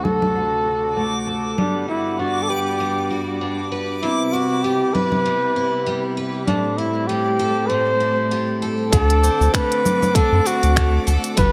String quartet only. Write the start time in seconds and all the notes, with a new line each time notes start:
Already playing: D2 C3 F#4
1.58 G2 B3 F#5
4.03 C3 B3 E4
6.48 A2 G3 C4
8.93 C4 F#5 D6
11.37 G3 B5